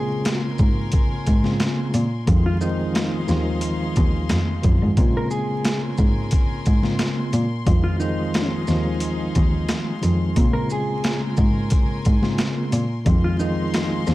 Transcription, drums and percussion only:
0.25 snare loud
0.25 closed hi-hat medium
0.58 kick loud
0.58 shaker medium
0.92 kick loud
0.92 closed hi-hat medium
1.26 kick medium
1.26 closed hi-hat medium
1.26 shaker medium
1.44 snare soft
1.60 snare loud
1.60 closed hi-hat medium
1.94 closed hi-hat medium
1.94 shaker medium
2.27 kick loud
2.27 closed hi-hat medium
2.61 shaker medium
2.95 snare loud
2.95 closed hi-hat medium
3.28 snare soft
3.28 shaker medium
3.61 closed hi-hat medium
3.96 kick loud
3.96 closed hi-hat medium
3.96 shaker medium
4.29 snare loud
4.29 closed hi-hat medium
4.63 kick loud
4.63 closed hi-hat medium
4.63 shaker medium
4.97 kick loud
4.97 closed hi-hat medium
5.31 shaker medium
5.65 snare loud
5.65 closed hi-hat medium
5.98 kick loud
5.98 shaker medium
6.31 kick loud
6.31 closed hi-hat medium
6.66 kick loud
6.66 closed hi-hat medium
6.66 shaker medium
6.83 snare soft
6.99 snare loud
6.99 closed hi-hat medium
7.33 closed hi-hat medium
7.33 shaker medium
7.67 kick loud
7.67 closed hi-hat medium
8.00 shaker medium
8.34 snare loud
8.34 closed hi-hat medium
8.67 snare soft
8.67 shaker medium
9.00 closed hi-hat medium
9.35 kick medium
9.35 closed hi-hat medium
9.35 shaker medium
9.69 snare loud
9.69 closed hi-hat medium
10.03 closed hi-hat medium
10.03 shaker medium
10.36 kick loud
10.36 closed hi-hat medium
10.70 shaker medium
11.04 snare loud
11.04 closed hi-hat medium
11.37 kick loud
11.37 shaker medium
11.70 kick loud
11.70 closed hi-hat medium
12.05 kick medium
12.05 closed hi-hat medium
12.05 shaker medium
12.23 snare soft
12.38 snare loud
12.38 closed hi-hat medium
12.72 closed hi-hat medium
12.72 shaker medium
13.06 kick loud
13.06 closed hi-hat medium
13.40 shaker medium
13.74 snare loud
13.74 closed hi-hat medium
14.07 snare soft
14.07 shaker medium

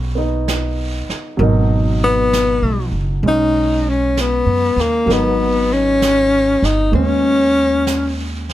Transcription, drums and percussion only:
0.48 brush sweep soft
0.48 snare soft
0.48 hi-hat pedal medium
1.10 snare soft
1.41 brush sweep soft
2.33 brush sweep soft
2.33 snare soft
2.33 hi-hat pedal medium
3.25 brush sweep soft
4.17 brush sweep soft
4.17 snare soft
4.17 hi-hat pedal soft
4.79 snare soft
5.10 brush sweep soft
5.10 snare soft
6.02 brush sweep soft
6.02 snare soft
6.02 hi-hat pedal medium
6.64 snare soft
6.94 brush sweep soft
7.87 brush sweep soft
7.87 snare soft
7.87 hi-hat pedal medium
8.49 snare soft

